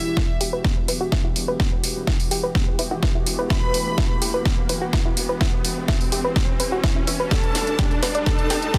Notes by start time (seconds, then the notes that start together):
Already playing: E3 B3 E4 F#4 G4 E5, riser
0.05 E1
0.17 E4, kick, snare
0.29 E1
0.41 E1 G4, open hi-hat
0.53 E1 B4
0.64 kick, snare
0.77 E1
0.88 D1 E4 B4 E5, open hi-hat
1.01 E1 F#4
1.12 E4, kick, snare
1.24 E1 E4
1.36 E1, open hi-hat
1.48 E1 B4
1.60 E4, kick, snare
1.72 E1
1.84 E1, open hi-hat
1.96 E1
2.07 E4, kick, snare
2.20 E1, open hi-hat
2.31 E1 G4, open hi-hat
2.43 E1 B4
2.55 kick, snare
2.67 E1
2.79 D1 E4 B4 E5, open hi-hat
2.91 E1 E4 F#4 B4 E5
3.03 E4, kick, snare
3.15 E1 E4
3.26 E1, open hi-hat
3.39 E1 B4
3.50 E4 B4 B5, kick, snare
3.62 E1
3.74 E1, open hi-hat
3.86 E1
3.98 E4, kick, snare
4.10 E1
4.22 E1 G4, open hi-hat
4.34 E1 B4
4.45 kick, snare
4.58 E1
4.69 D1 E4 B4 E5, open hi-hat
4.81 E1 F#4
4.93 E4, kick, snare
5.05 E1 E4
5.17 E1, open hi-hat
5.29 E1 B4
5.41 E4, kick, snare
5.53 E1
5.64 E1, open hi-hat
5.77 E1
5.88 E4, kick, snare
6.01 E1, open hi-hat
6.12 E1 G4, open hi-hat
6.24 E1 B4
6.36 kick, snare
6.48 E1
6.60 D1 B4, open hi-hat
6.72 E1 F#4
6.84 E4, kick, snare
6.96 E1 E4
7.07 E1 E4 B4 E5, open hi-hat
7.20 E1 B4
7.31 G3 D4 G4 A4 B4 A5, kick, snare, closed hi-hat
7.43 E1, closed hi-hat
7.55 E1, snare, open hi-hat
7.67 E1, closed hi-hat
7.79 G4, kick, snare, closed hi-hat
7.91 E1, closed hi-hat
8.03 E1 B4, snare, open hi-hat
8.15 E1 D5, closed hi-hat
8.26 G4 A4 A5, kick, snare, closed hi-hat
8.39 E1, closed hi-hat
8.50 D1 G4 D5 G5, snare, open hi-hat
8.62 E1, closed hi-hat
8.74 G4, kick, snare, closed hi-hat